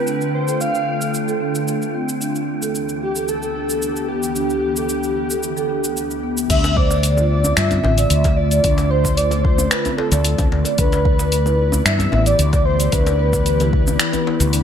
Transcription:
Already playing: D3 A3 F4 B4 G5
0.07 D4, cabasa
0.21 cabasa
0.34 C5
0.48 A4, cabasa
0.60 D4 F5, cabasa
0.75 cabasa
1.01 A4, cabasa
1.14 cabasa
1.28 A4, cabasa
1.40 D4
1.55 cabasa
1.67 D4, cabasa
1.82 cabasa
1.94 C4
2.09 cabasa
2.21 D2 E3 B3 D4 G4, cabasa
2.35 cabasa
2.62 A4, cabasa
2.75 D4, cabasa
2.89 cabasa
3.02 G4
3.15 A4, cabasa
3.28 A4, cabasa
3.42 A4, cabasa
3.55 D4
3.69 cabasa
3.82 D4, cabasa
3.96 cabasa
4.08 B3 G4
4.23 cabasa
4.35 D4, cabasa
4.50 cabasa
4.76 A4, cabasa
4.89 D4, cabasa
5.03 cabasa
5.30 A4, cabasa
5.43 cabasa
5.57 A4, cabasa
5.70 D4
5.84 cabasa
5.97 D4, cabasa
6.11 cabasa
6.23 B3
6.37 cabasa
6.49 D2 D3 A3 D4 F4 D5 E5, kick, open hi-hat, crash, cabasa
6.64 open hi-hat, djembe slap, djembe tone, cabasa
6.76 C5 D5, kick
6.91 djembe slap, cabasa
7.03 open hi-hat, cabasa
7.17 F4, djembe tone, cabasa
7.29 D5
7.44 djembe bass, cabasa
7.56 G2 F4 E5, finger snap, open hi-hat, cabasa
7.71 C4, open hi-hat, djembe bass, cabasa
7.84 A1 F4, djembe slap, djembe tone, djembe bass
7.98 D5, open hi-hat, cabasa
8.10 D2, open hi-hat, cabasa
8.24 kick, open hi-hat, djembe slap, cabasa
8.37 D5
8.51 D5, open hi-hat, cabasa
8.64 D2 D4, kick, open hi-hat, cabasa
8.78 open hi-hat, djembe slap, cabasa
8.90 C5
9.05 kick, djembe slap, cabasa
9.17 D5, open hi-hat, cabasa
9.31 F4, open hi-hat, djembe tone, cabasa
9.44 C5, kick
9.58 djembe bass, cabasa
9.70 F4 B4, finger snap, open hi-hat, cabasa
9.85 C4, open hi-hat, djembe bass, cabasa
9.97 F4 A4, djembe slap
10.12 D2 D5, open hi-hat, djembe slap, cabasa
10.25 open hi-hat, cabasa
10.38 D2, kick, open hi-hat, djembe bass, cabasa
10.52 D2, djembe slap
10.65 D5, open hi-hat, djembe tone, cabasa
10.78 D2 E3 B3 D4 G4 B4, kick, open hi-hat, cabasa
10.92 open hi-hat, djembe slap, djembe tone, cabasa
11.05 B4, kick
11.19 djembe slap, cabasa
11.32 open hi-hat, cabasa
11.46 E4, djembe tone, cabasa
11.72 djembe bass, cabasa
11.85 G2 E4 E5, finger snap, open hi-hat, cabasa
11.99 B3, open hi-hat, djembe bass, cabasa
12.12 A1 E4, djembe slap, djembe tone, djembe bass
12.26 D5, open hi-hat, cabasa
12.39 D2, open hi-hat, cabasa
12.53 kick, open hi-hat, djembe slap, cabasa
12.65 C5
12.80 D5, open hi-hat, cabasa
12.92 D2 D4 B4, kick, open hi-hat, cabasa
13.06 open hi-hat, djembe slap, djembe tone, cabasa
13.19 B4
13.33 kick, djembe slap, cabasa
13.46 open hi-hat, cabasa
13.60 E4, open hi-hat, djembe tone, cabasa
13.73 kick
13.87 djembe bass, cabasa
13.99 E4, finger snap, open hi-hat, cabasa
14.13 B3, open hi-hat, djembe bass, cabasa
14.26 E4, djembe slap
14.40 D2, open hi-hat, djembe slap, cabasa
14.53 D4, open hi-hat, cabasa

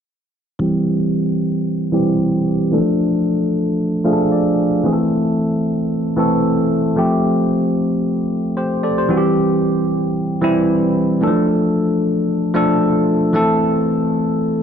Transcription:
0.59 E3 G3 C4 G4
1.92 E3 G3 C4 G4
2.71 E3 A3 D4 A4
2.78 F3
4.04 F3 A3 D4 G#4 F5
4.13 A4
4.32 D5
4.84 E3 A3 C4 G#4
4.93 A4
6.17 E3 A3 C4 A4
6.96 F3 A3 C4 G4
8.57 G4 C5
8.83 A4 D5
8.98 G4 C5
9.09 E3 G3 C4 F#4
9.17 G4
10.41 E3 G3 C4 E4
11.21 E3 A3 D4 A4
11.27 F3
12.54 F3 A3 D4 A4
13.33 E3 A3 C4 A4

